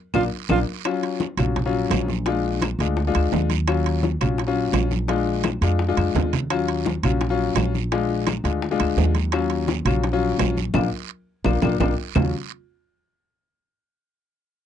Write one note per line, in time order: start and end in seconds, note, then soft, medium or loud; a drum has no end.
0.14 0.27 A#1 medium
0.14 0.26 A#3 medium
0.14 0.26 D4 medium
0.14 0.26 F4 medium
0.14 0.23 F4 medium
0.14 low bongo medium
0.14 high conga medium
0.14 high timbale medium
0.14 long guiro loud
0.14 claves loud
0.49 0.63 A#1 loud
0.49 0.61 A#3 medium
0.49 0.61 D4 loud
0.49 0.61 F4 medium
0.49 0.59 F4 medium
0.49 low bongo medium
0.49 high conga loud
0.49 high timbale loud
0.49 long guiro loud
0.49 claves loud
0.85 1.23 F#3 loud
0.85 1.23 C#4 medium
0.85 1.23 F4 loud
0.85 high bongo medium
0.85 high conga soft
0.85 high timbale loud
0.85 claves medium
1.02 high bongo soft
1.02 high conga soft
1.02 high timbale medium
1.20 high bongo medium
1.20 high conga medium
1.20 low timbale medium
1.20 short guiro medium
1.37 1.87 A#1 loud
1.37 1.57 F#3 medium
1.37 1.57 C#4 medium
1.37 1.57 F4 medium
1.37 high conga soft
1.37 low conga medium
1.37 high timbale medium
1.37 short guiro medium
1.37 claves medium
1.56 high bongo medium
1.56 high conga soft
1.56 low conga medium
1.56 high timbale medium
1.56 long guiro medium
1.66 2.09 F#3 loud
1.66 2.09 C#4 medium
1.66 2.09 F4 loud
1.73 high bongo soft
1.73 high conga soft
1.90 2.74 A#1 medium
1.90 high bongo soft
1.90 low bongo medium
1.90 high conga medium
1.90 high timbale loud
1.90 low timbale medium
1.90 short guiro medium
1.90 claves medium
2.08 high bongo soft
2.08 high conga medium
2.08 short guiro medium
2.26 2.64 G#3 medium
2.26 2.64 D4 medium
2.26 2.64 F4 loud
2.26 high bongo medium
2.26 high conga soft
2.26 high timbale medium
2.26 long guiro medium
2.44 high bongo soft
2.44 high conga soft
2.62 high bongo medium
2.62 high conga medium
2.62 high timbale medium
2.62 low timbale medium
2.62 short guiro medium
2.62 claves medium
2.79 3.12 D2 loud
2.79 2.99 G#3 medium
2.79 2.99 D4 medium
2.79 2.99 F4 medium
2.79 high timbale medium
2.79 short guiro medium
2.97 high bongo medium
2.97 high conga soft
2.97 long guiro medium
3.07 3.50 G#3 medium
3.07 3.50 D4 loud
3.07 3.50 F4 loud
3.14 3.32 D2 medium
3.14 high bongo soft
3.14 high conga soft
3.14 high timbale medium
3.14 claves medium
3.32 4.15 D#2 loud
3.32 high bongo soft
3.32 low bongo medium
3.32 high conga medium
3.32 low timbale medium
3.32 short guiro medium
3.50 high bongo soft
3.50 high conga medium
3.50 high timbale medium
3.50 short guiro medium
3.67 4.05 F#3 loud
3.67 4.06 C#4 medium
3.67 4.05 F4 loud
3.67 high bongo medium
3.67 high timbale loud
3.67 long guiro medium
3.67 claves medium
3.86 high bongo soft
3.86 high timbale medium
4.03 high bongo medium
4.03 high conga loud
4.03 low timbale medium
4.03 short guiro medium
4.21 4.71 A#1 loud
4.21 4.40 F#3 medium
4.21 4.40 C#4 medium
4.21 4.40 F4 medium
4.21 high conga soft
4.21 low conga medium
4.21 high timbale medium
4.21 short guiro medium
4.21 claves medium
4.38 high bongo medium
4.38 high conga soft
4.38 high timbale medium
4.38 long guiro medium
4.47 4.91 F#3 loud
4.47 4.91 C#4 medium
4.47 4.91 F4 loud
4.56 high bongo soft
4.56 high conga soft
4.73 5.56 A#1 medium
4.73 high bongo soft
4.73 low bongo medium
4.73 high conga medium
4.73 high timbale medium
4.73 low timbale medium
4.73 short guiro medium
4.73 claves medium
4.91 high bongo soft
4.91 high conga medium
4.91 short guiro medium
5.08 5.46 G#3 loud
5.08 5.46 D4 medium
5.08 5.46 F4 loud
5.08 high bongo medium
5.08 high conga soft
5.08 high timbale medium
5.08 long guiro medium
5.26 high bongo soft
5.26 high conga soft
5.44 high bongo medium
5.44 high conga loud
5.44 high timbale medium
5.44 low timbale medium
5.44 short guiro medium
5.44 claves medium
5.61 5.95 F2 medium
5.61 5.81 G#3 medium
5.61 5.81 D4 medium
5.61 5.81 F4 medium
5.61 high conga soft
5.61 high timbale medium
5.61 short guiro medium
5.79 high bongo medium
5.79 high conga soft
5.79 long guiro medium
5.88 6.32 G#3 medium
5.88 6.32 D4 medium
5.88 6.32 F4 loud
5.97 6.14 F2 medium
5.97 high bongo soft
5.97 high conga medium
5.97 high timbale medium
5.97 claves medium
6.15 6.98 D#2 medium
6.15 high bongo soft
6.15 low bongo medium
6.15 low conga medium
6.15 low timbale medium
6.15 short guiro medium
6.33 high bongo soft
6.33 low conga medium
6.33 high timbale medium
6.33 short guiro medium
6.50 6.88 F#3 medium
6.50 6.88 C#4 medium
6.50 6.88 F4 loud
6.50 high bongo medium
6.50 high conga soft
6.50 high timbale loud
6.50 long guiro medium
6.50 claves medium
6.68 high bongo soft
6.68 high timbale medium
6.86 high bongo medium
6.86 high conga medium
6.86 low timbale medium
6.86 short guiro medium
7.03 7.53 A#1 medium
7.03 7.23 F#3 medium
7.03 7.23 C#4 medium
7.03 7.23 F4 loud
7.03 high conga soft
7.03 low conga medium
7.03 high timbale medium
7.03 short guiro medium
7.03 claves medium
7.21 high bongo medium
7.21 high timbale medium
7.21 long guiro medium
7.30 7.74 F#3 loud
7.30 7.74 C#4 medium
7.30 7.74 F4 loud
7.39 high bongo soft
7.55 8.38 A#1 medium
7.55 high bongo soft
7.55 low bongo medium
7.55 high conga medium
7.55 high timbale loud
7.55 low timbale medium
7.55 short guiro medium
7.55 claves medium
7.74 high bongo soft
7.74 high conga medium
7.74 short guiro medium
7.92 8.29 G#3 loud
7.92 8.29 D4 medium
7.92 8.29 F4 loud
7.92 high bongo medium
7.92 high timbale medium
7.92 long guiro medium
8.10 high bongo soft
8.10 high conga soft
8.27 high bongo medium
8.27 high conga medium
8.27 high timbale loud
8.27 low timbale medium
8.27 short guiro medium
8.27 claves medium
8.44 8.77 D2 medium
8.44 8.63 G#3 medium
8.44 8.63 D4 medium
8.44 8.63 F4 medium
8.44 high timbale medium
8.44 short guiro medium
8.62 high bongo medium
8.62 high conga soft
8.62 long guiro medium
8.71 9.15 G#3 loud
8.71 9.15 D4 loud
8.71 9.15 F4 loud
8.80 8.96 D2 medium
8.80 high bongo soft
8.80 high conga soft
8.80 high timbale medium
8.80 claves medium
8.97 9.80 D#2 medium
8.97 high bongo soft
8.97 low bongo medium
8.97 high conga medium
8.97 low timbale loud
8.97 short guiro medium
9.15 high bongo soft
9.15 high conga medium
9.15 high timbale medium
9.15 short guiro medium
9.32 9.70 F#3 loud
9.32 9.70 C#4 loud
9.32 9.70 F4 loud
9.32 high bongo medium
9.32 high timbale loud
9.32 long guiro medium
9.32 claves medium
9.50 high bongo soft
9.50 high conga soft
9.50 high timbale medium
9.68 high bongo medium
9.68 high conga loud
9.68 low timbale medium
9.68 short guiro medium
9.85 10.35 A#1 loud
9.85 10.05 F#3 medium
9.85 10.05 C#4 medium
9.85 10.05 F4 loud
9.85 high conga soft
9.85 low conga medium
9.85 high timbale loud
9.85 short guiro medium
9.85 claves medium
10.03 high bongo medium
10.03 high conga soft
10.03 high timbale medium
10.03 long guiro medium
10.13 10.56 F#3 loud
10.13 10.56 C#4 medium
10.13 10.56 F4 loud
10.21 high bongo soft
10.38 10.72 A#1 medium
10.38 high bongo soft
10.38 low bongo medium
10.38 high conga medium
10.38 high timbale loud
10.38 low timbale medium
10.38 short guiro medium
10.38 claves medium
10.57 high bongo soft
10.57 high conga medium
10.57 short guiro medium
10.74 10.88 A#1 loud
10.74 10.86 A#3 medium
10.74 10.86 D4 medium
10.74 10.86 F4 medium
10.74 low bongo loud
10.74 high conga loud
10.74 high timbale loud
10.74 long guiro loud
10.74 claves loud
11.44 11.58 A#1 medium
11.44 11.57 A#3 loud
11.44 11.57 D4 loud
11.44 11.57 F4 loud
11.44 low bongo loud
11.44 high conga loud
11.44 high timbale medium
11.44 long guiro loud
11.44 claves loud
11.62 11.76 A#1 loud
11.62 11.75 A#3 loud
11.62 11.75 D4 loud
11.62 11.75 F4 loud
11.62 low bongo loud
11.62 high conga loud
11.62 high timbale loud
11.62 long guiro loud
11.62 claves loud
11.80 11.93 A#1 loud
11.80 11.92 A#3 loud
11.80 11.92 D4 loud
11.80 11.92 F4 loud
11.80 low bongo loud
11.80 high conga medium
11.80 high timbale loud
11.80 long guiro loud
11.80 claves loud
12.15 12.32 D#2 loud
12.15 12.32 F#3 medium
12.15 12.32 C#4 medium
12.15 12.32 F4 medium
12.15 low bongo loud
12.15 low conga loud
12.15 low timbale loud
12.15 long guiro loud
12.15 claves loud